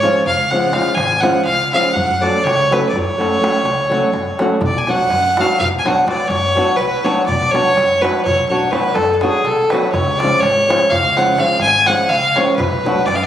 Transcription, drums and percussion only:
0.03 darbuka tek medium
0.27 darbuka dum medium
0.51 darbuka tek medium
0.73 darbuka tek medium
0.98 darbuka tek medium
1.23 darbuka tek medium
1.35 darbuka tek soft
1.46 darbuka tek medium
1.73 darbuka tek medium
1.96 darbuka dum medium
2.23 darbuka tek medium
2.47 darbuka tek medium
2.72 darbuka tek medium
2.85 darbuka tek soft
2.95 darbuka dum medium
3.09 darbuka tek soft
3.21 darbuka tek medium
3.44 darbuka tek medium
3.55 darbuka tek soft
3.65 darbuka tek medium
3.80 darbuka tek soft
3.92 darbuka tek medium
4.02 darbuka tek soft
4.13 darbuka tek medium
4.39 darbuka tek medium
4.50 darbuka tek soft
4.61 darbuka dum medium
4.87 darbuka tek medium
5.10 darbuka tek medium
5.37 darbuka tek medium
5.61 darbuka dum medium
5.86 darbuka tek medium
6.08 darbuka tek medium
6.31 darbuka tek medium
6.57 darbuka tek medium
6.68 darbuka tek soft
6.79 darbuka tek medium
7.06 darbuka tek medium
7.28 darbuka dum medium
7.55 darbuka tek medium
7.77 darbuka tek medium
8.04 darbuka tek medium
8.26 darbuka dum medium
8.73 darbuka tek medium
8.96 darbuka tek medium
9.21 darbuka tek medium
9.33 darbuka tek soft
9.45 darbuka tek medium
9.70 darbuka tek medium
9.93 darbuka dum medium
10.20 darbuka tek medium
10.43 darbuka tek medium
10.70 darbuka tek loud
10.92 darbuka dum loud
11.17 darbuka tek medium
11.38 darbuka tek medium
11.60 darbuka tek medium
11.86 darbuka tek medium
11.99 darbuka tek soft
12.10 darbuka tek medium
12.36 darbuka tek medium
12.60 darbuka dum loud
12.86 darbuka tek medium
12.97 darbuka tek soft
13.08 darbuka tek medium

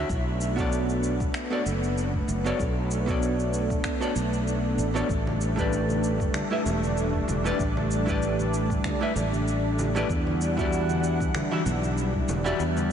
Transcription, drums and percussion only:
0.09 kick loud
0.09 shaker soft
0.41 shaker medium
0.58 kick loud
0.58 shaker soft
0.72 shaker soft
0.89 shaker soft
1.04 shaker medium
1.20 kick loud
1.20 shaker soft
1.34 finger snap medium
1.34 shaker soft
1.66 shaker medium
1.83 shaker soft
1.98 shaker soft
2.14 kick medium
2.29 shaker medium
2.46 shaker soft
2.59 kick loud
2.59 shaker soft
2.91 shaker medium
3.08 kick loud
3.08 shaker soft
3.22 shaker soft
3.40 shaker soft
3.54 shaker medium
3.70 kick loud
3.70 shaker soft
3.84 finger snap medium
3.84 kick medium
3.84 shaker soft
4.02 shaker soft
4.16 shaker medium
4.33 shaker soft
4.48 shaker soft
4.79 shaker medium
4.96 shaker soft
5.09 kick loud
5.09 shaker soft
5.27 high conga medium
5.41 shaker medium
5.57 kick loud
5.57 shaker soft
5.73 shaker soft
5.89 high conga medium
5.89 shaker soft
6.04 shaker medium
6.20 kick loud
6.20 shaker soft
6.34 finger snap medium
6.34 high conga medium
6.34 shaker soft
6.66 low conga medium
6.66 shaker medium
6.83 high conga medium
6.83 shaker soft
6.97 shaker soft
7.14 kick medium
7.28 high conga medium
7.28 shaker medium
7.46 shaker soft
7.59 kick loud
7.59 shaker soft
7.77 high conga medium
7.91 shaker medium
8.07 kick loud
8.07 shaker soft
8.22 shaker soft
8.39 high conga medium
8.39 shaker soft
8.54 shaker medium
8.70 kick medium
8.70 shaker soft
8.84 finger snap medium
8.84 kick medium
8.84 high conga medium
8.84 shaker soft
9.16 low conga medium
9.16 shaker medium
9.32 high conga medium
9.32 shaker soft
9.48 shaker soft
9.79 high conga medium
9.79 shaker medium
9.96 shaker soft
10.09 kick loud
10.09 shaker soft
10.27 high conga medium
10.41 shaker medium
10.58 kick loud
10.58 shaker soft
10.73 shaker soft
10.89 high conga medium
10.89 shaker soft
11.04 shaker medium
11.20 kick loud
11.20 shaker soft
11.34 finger snap medium
11.34 high conga medium
11.34 shaker soft
11.66 low conga medium
11.66 shaker medium
11.82 high conga medium
11.82 shaker soft
11.98 shaker soft
12.14 kick medium
12.29 high conga medium
12.29 shaker medium
12.46 shaker soft
12.60 shaker soft
12.77 high conga medium
12.77 shaker soft

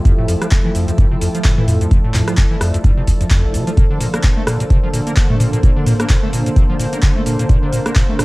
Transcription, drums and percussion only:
0.05 kick loud
0.05 closed hi-hat medium
0.05 cabasa soft
0.28 open hi-hat loud
0.28 cabasa medium
0.42 cross-stick medium
0.42 closed hi-hat medium
0.42 cabasa soft
0.51 kick loud
0.51 clap loud
0.51 closed hi-hat soft
0.51 cabasa soft
0.75 open hi-hat loud
0.75 cabasa medium
0.88 closed hi-hat medium
0.88 cabasa soft
0.98 kick loud
0.98 closed hi-hat medium
0.98 cabasa soft
1.21 open hi-hat loud
1.21 cabasa medium
1.35 closed hi-hat medium
1.35 cabasa soft
1.44 kick loud
1.44 clap loud
1.44 closed hi-hat soft
1.44 cabasa soft
1.58 mid tom loud
1.68 mid tom loud
1.68 open hi-hat loud
1.68 cabasa medium
1.81 closed hi-hat medium
1.81 cabasa soft
1.91 kick loud
1.91 closed hi-hat medium
1.91 cabasa soft
2.14 clap medium
2.14 mid tom medium
2.14 open hi-hat loud
2.14 cabasa medium
2.28 cross-stick medium
2.28 closed hi-hat medium
2.28 cabasa soft
2.37 kick loud
2.37 clap loud
2.37 closed hi-hat medium
2.37 cabasa soft
2.61 cross-stick medium
2.61 open hi-hat medium
2.61 cabasa medium
2.74 closed hi-hat medium
2.74 cabasa soft
2.84 kick loud
2.84 closed hi-hat medium
2.84 cabasa soft
3.07 kick medium
3.07 open hi-hat loud
3.07 cabasa medium
3.21 closed hi-hat medium
3.21 cabasa soft
3.30 kick loud
3.30 clap loud
3.30 closed hi-hat soft
3.30 cabasa soft
3.54 open hi-hat loud
3.54 cabasa medium
3.67 closed hi-hat medium
3.67 cabasa soft
3.77 kick loud
3.77 closed hi-hat medium
3.77 cabasa soft
4.00 open hi-hat loud
4.00 cabasa medium
4.14 cross-stick medium
4.14 closed hi-hat medium
4.14 cabasa soft
4.23 kick loud
4.23 clap loud
4.23 closed hi-hat medium
4.23 cabasa soft
4.47 cross-stick medium
4.47 open hi-hat medium
4.47 cabasa medium
4.60 closed hi-hat medium
4.60 cabasa soft
4.70 kick loud
4.70 closed hi-hat medium
4.70 cabasa soft
4.93 open hi-hat loud
4.93 cabasa medium
5.07 closed hi-hat medium
5.07 cabasa soft
5.16 kick loud
5.16 clap loud
5.16 closed hi-hat soft
5.16 cabasa soft
5.30 mid tom loud
5.40 mid tom loud
5.40 open hi-hat loud
5.40 cabasa medium
5.53 closed hi-hat medium
5.53 cabasa soft
5.63 kick loud
5.63 closed hi-hat medium
5.63 cabasa soft
5.87 mid tom medium
5.87 open hi-hat loud
5.87 cabasa medium
6.00 cross-stick medium
6.00 closed hi-hat medium
6.00 cabasa soft
6.09 kick loud
6.09 clap loud
6.09 closed hi-hat medium
6.09 cabasa soft
6.33 open hi-hat medium
6.33 cabasa medium
6.46 closed hi-hat medium
6.46 cabasa soft
6.56 kick loud
6.56 closed hi-hat medium
6.56 cabasa soft
6.80 open hi-hat loud
6.80 cabasa medium
6.93 closed hi-hat medium
6.93 cabasa soft
7.02 kick loud
7.02 clap loud
7.02 closed hi-hat medium
7.02 cabasa soft
7.26 open hi-hat loud
7.26 cabasa medium
7.39 closed hi-hat medium
7.39 cabasa soft
7.49 kick loud
7.49 closed hi-hat medium
7.49 cabasa soft
7.73 open hi-hat loud
7.73 cabasa medium
7.86 cross-stick medium
7.86 closed hi-hat medium
7.86 cabasa soft
7.95 kick loud
7.95 clap loud
7.95 closed hi-hat medium
7.95 cabasa soft
8.19 cross-stick medium
8.19 open hi-hat medium
8.19 cabasa medium

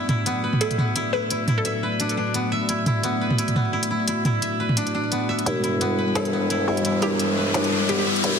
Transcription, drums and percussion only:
0.09 closed hi-hat soft
0.09 mid tom medium
0.26 closed hi-hat medium
0.53 mid tom medium
0.61 closed hi-hat medium
0.71 closed hi-hat soft
0.71 mid tom soft
0.78 mid tom medium
0.96 closed hi-hat medium
1.30 closed hi-hat medium
1.48 closed hi-hat soft
1.48 mid tom medium
1.65 closed hi-hat medium
2.00 closed hi-hat medium
2.09 closed hi-hat soft
2.34 closed hi-hat medium
2.69 closed hi-hat medium
2.86 closed hi-hat soft
2.86 mid tom medium
3.03 closed hi-hat medium
3.31 mid tom medium
3.38 closed hi-hat medium
3.48 closed hi-hat soft
3.48 mid tom soft
3.56 mid tom medium
3.83 closed hi-hat medium
4.08 closed hi-hat medium
4.25 closed hi-hat soft
4.25 mid tom medium
4.42 closed hi-hat medium
4.69 mid tom medium
4.77 closed hi-hat medium
4.87 closed hi-hat soft
5.12 closed hi-hat medium
5.39 closed hi-hat soft
5.46 closed hi-hat medium
5.64 closed hi-hat soft
5.81 closed hi-hat medium
6.15 snare loud
6.15 closed hi-hat medium
6.25 closed hi-hat soft
6.50 closed hi-hat medium
6.77 closed hi-hat soft
6.85 closed hi-hat medium
7.02 closed hi-hat soft
7.19 closed hi-hat medium
7.54 snare loud
7.54 closed hi-hat medium
7.64 closed hi-hat soft
7.89 closed hi-hat medium
8.16 closed hi-hat soft
8.24 closed hi-hat medium

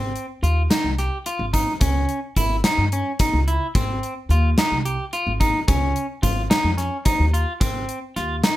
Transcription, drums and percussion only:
0.16 closed hi-hat soft
0.44 closed hi-hat medium
0.71 snare medium
0.71 closed hi-hat medium
0.98 snare soft
0.98 closed hi-hat medium
1.26 closed hi-hat medium
1.54 kick medium
1.54 closed hi-hat medium
1.81 kick medium
1.81 closed hi-hat medium
2.09 closed hi-hat medium
2.36 kick medium
2.36 closed hi-hat medium
2.64 snare medium
2.64 closed hi-hat medium
2.92 closed hi-hat medium
3.19 kick medium
3.19 closed hi-hat medium
3.48 closed hi-hat medium
3.75 kick medium
3.75 closed hi-hat medium
4.03 closed hi-hat medium
4.30 closed hi-hat medium
4.58 snare medium
4.58 closed hi-hat medium
4.85 closed hi-hat medium
5.13 closed hi-hat medium
5.41 kick medium
5.41 closed hi-hat medium
5.68 kick loud
5.68 closed hi-hat medium
5.96 closed hi-hat soft
6.23 kick medium
6.23 closed hi-hat medium
6.51 snare loud
6.51 closed hi-hat medium
6.78 snare soft
6.78 closed hi-hat medium
7.05 kick medium
7.05 closed hi-hat medium
7.34 closed hi-hat medium
7.61 kick loud
7.61 closed hi-hat medium
7.89 closed hi-hat medium
8.16 snare soft
8.16 closed hi-hat medium
8.44 snare loud
8.44 closed hi-hat medium

